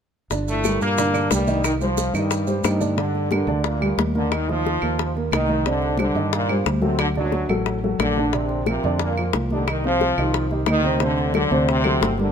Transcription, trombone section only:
0.49 0.80 A2 medium
0.49 0.80 A3 loud
0.83 1.29 A#2 medium
0.83 1.29 A#3 loud
1.33 1.66 G2 medium
1.33 1.65 G3 medium
1.65 1.73 D#3 medium
1.65 1.73 D#4 medium
1.81 2.12 F3 medium
1.81 2.13 F4 medium
2.15 2.82 G2 medium
2.15 2.82 G3 medium
2.65 2.96 D#3 medium
2.65 2.96 D#4 medium
2.98 3.29 D3 medium
2.98 3.30 D4 medium
3.32 3.63 D3 medium
3.32 3.64 D4 medium
3.65 3.99 A#2 medium
3.65 3.99 A#3 medium
4.16 4.31 D3 medium
4.16 4.31 D4 medium
4.33 4.49 D#3 medium
4.33 4.49 D#4 medium
4.49 5.16 F3 loud
4.49 5.16 F4 medium
5.34 5.64 D#3 medium
5.34 5.65 D#4 medium
5.68 5.98 D3 medium
5.68 5.99 D4 medium
5.99 6.31 D3 medium
5.99 6.31 D4 medium
6.34 6.65 A#2 medium
6.34 6.65 A#3 medium
6.84 6.99 C3 medium
6.84 6.99 C4 medium
7.00 7.08 D3 medium
7.00 7.08 D4 medium
7.17 7.54 F#2 medium
7.17 7.54 F#3 loud
8.01 8.32 D3 medium
8.01 8.32 D4 medium
8.35 8.66 C3 medium
8.35 8.66 C4 medium
8.69 8.99 C3 medium
8.69 8.99 C4 medium
9.02 9.33 A#2 medium
9.02 9.33 A#3 medium
9.53 9.68 D3 medium
9.53 9.67 D4 medium
9.70 9.84 D#3 medium
9.70 9.84 D#4 medium
9.87 10.48 F3 medium
9.87 10.48 F4 medium
10.69 11.00 D#3 loud
10.69 11.00 D#4 medium
11.03 11.33 D3 medium
11.03 11.33 D4 medium
11.36 11.67 D3 medium
11.36 11.66 D4 medium
11.70 12.16 C3 loud
11.70 12.16 C4 medium
12.20 12.32 D3 medium
12.20 12.32 D4 medium

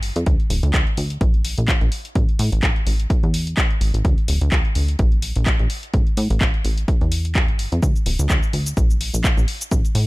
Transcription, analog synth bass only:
0.00 0.12 G1 medium
0.16 0.25 F2 medium
0.27 0.38 D2 medium
0.50 0.61 D1 medium
0.63 0.72 D2 loud
0.74 0.85 D2 medium
0.97 1.18 D2 medium
1.21 1.54 A#1 loud
1.58 1.77 A#1 medium
1.81 1.90 A#1 loud
2.15 2.27 A1 medium
2.39 2.50 A2 loud
2.52 2.61 A1 loud
2.63 2.74 A1 medium
2.86 3.07 A1 medium
3.23 3.55 E2 loud
3.81 3.92 A1 medium
3.94 4.03 A1 medium
4.05 4.16 D2 loud
4.28 4.39 D1 loud
4.41 4.50 D2 loud
4.76 4.96 D2 medium
4.99 5.33 A#1 loud
5.36 5.55 A#1 loud
5.60 5.68 A#1 loud
5.94 6.05 A1 medium
6.17 6.28 A2 loud
6.30 6.39 A1 loud
6.41 6.52 A1 medium
6.65 6.85 A1 medium
7.01 7.50 E2 loud
7.48 7.68 G1 loud
7.72 7.81 F2 medium
7.83 7.94 D2 loud
8.06 8.17 D1 loud
8.19 8.28 D2 loud
8.30 8.41 D2 medium
8.53 8.74 D2 medium
8.77 9.10 A#1 loud
9.14 9.33 A#1 medium
9.37 9.46 A#1 loud
9.72 9.83 A1 loud
9.95 10.06 A2 medium

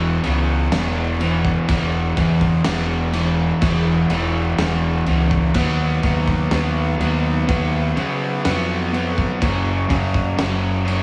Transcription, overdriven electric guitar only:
0.00 0.22 E2 loud
0.00 0.23 B2 loud
0.00 0.24 E3 loud
0.23 0.71 E2 medium
0.23 0.72 B2 medium
0.23 0.73 E3 loud
0.73 1.19 E2 loud
0.73 1.20 B2 loud
0.73 1.20 E3 loud
1.20 1.67 E2 medium
1.20 1.68 B2 medium
1.20 1.68 E3 loud
1.68 2.15 E2 medium
1.68 2.16 B2 medium
1.68 2.17 E3 loud
2.16 2.63 E2 loud
2.16 2.64 B2 loud
2.16 2.64 E3 loud
2.64 3.11 E2 medium
2.64 3.12 B2 medium
2.64 3.13 E3 loud
3.13 3.60 E2 medium
3.13 3.61 B2 loud
3.13 3.62 E3 loud
3.61 4.10 E2 loud
3.61 4.10 B2 loud
3.61 4.11 E3 loud
4.11 4.57 E2 medium
4.11 4.58 B2 medium
4.11 4.58 E3 loud
4.58 5.06 E2 loud
4.58 5.06 B2 loud
4.58 5.07 E3 loud
5.07 5.53 E2 medium
5.07 5.53 B2 medium
5.07 5.53 E3 loud
5.55 6.02 B2 medium
5.55 6.04 F#3 medium
5.55 6.03 B3 loud
6.03 6.50 B2 loud
6.03 6.52 F#3 loud
6.03 6.52 B3 loud
6.52 6.98 B2 medium
6.52 7.00 F#3 medium
6.52 7.00 B3 loud
6.99 7.46 B2 medium
6.99 7.47 F#3 medium
6.99 7.48 B3 loud
7.47 7.94 B2 loud
7.47 7.95 F#3 loud
7.47 7.95 B3 loud
7.95 8.43 B2 medium
7.95 8.43 F#3 medium
7.95 8.44 B3 loud
8.44 8.91 B2 loud
8.44 8.92 F#3 loud
8.44 8.92 B3 loud
8.92 9.38 B2 medium
8.92 9.39 F#3 loud
8.92 9.39 B3 loud
9.40 9.88 F#2 medium
9.40 9.88 C#3 loud
9.40 9.89 F#3 loud
9.89 10.36 F#2 loud
9.89 10.37 C#3 loud
9.89 10.37 F#3 loud
10.37 10.84 F#2 medium
10.37 10.84 C#3 medium
10.37 10.85 F#3 medium
10.85 11.03 F#2 medium
10.85 11.03 C#3 medium
10.85 11.03 F#3 medium

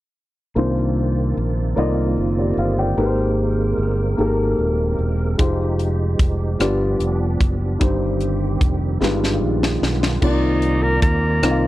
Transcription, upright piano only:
0.55 1.73 C3 soft
0.55 1.39 A#3 soft
0.55 1.40 D4 soft
0.55 1.40 D#4 soft
0.55 1.40 F4 soft
0.55 1.41 C5 medium
1.76 2.60 A#3 medium
1.76 2.61 D#4 soft
1.76 2.61 F4 soft
1.76 2.37 D5 medium
1.76 2.18 D#5 medium
2.38 2.58 G4 soft
2.38 2.57 D5 soft
2.58 2.77 C5 soft
2.58 2.77 F5 soft
2.78 3.17 D5 soft
2.78 3.16 G5 soft
2.97 4.15 G#3 soft
2.97 3.81 A#3 soft
2.97 3.81 D#4 medium
2.97 3.82 G4 medium
2.97 3.82 G#4 soft
2.97 3.06 B4 medium
3.06 3.86 C5 medium
4.17 5.01 A#3 medium
4.17 5.02 D#4 soft
4.17 5.02 G4 soft
4.17 5.02 G#4 soft
4.17 4.26 A4 soft
4.26 5.06 A#4 medium
5.37 6.22 G#3 medium
5.37 6.22 D#4 medium
5.37 6.23 F4 soft
5.37 6.23 G4 soft
5.37 6.23 C5 medium
6.59 7.77 G3 medium
6.59 7.43 B3 medium
6.59 7.43 D4 medium
6.59 7.44 F4 medium
6.59 7.44 G4 medium
6.59 7.44 D5 medium
7.79 8.97 G2 medium
7.79 8.63 D#4 medium
7.79 8.64 G4 soft
7.79 8.65 C5 medium
9.01 10.18 G2 medium
9.01 9.84 G#3 medium
9.01 9.84 D#4 medium
9.01 9.85 F4 medium
9.01 9.85 G4 medium
9.01 9.86 B4 medium
10.22 11.39 C3 soft
10.22 11.05 C4 medium
10.22 11.05 D#4 soft
10.22 11.06 F4 medium
10.22 11.06 A#4 soft
10.22 11.06 D5 medium
11.42 11.67 C4 medium
11.42 11.67 D#4 soft
11.42 11.67 F4 soft
11.42 11.67 A#4 soft
11.42 11.50 D#5 soft
11.51 11.67 F5 medium

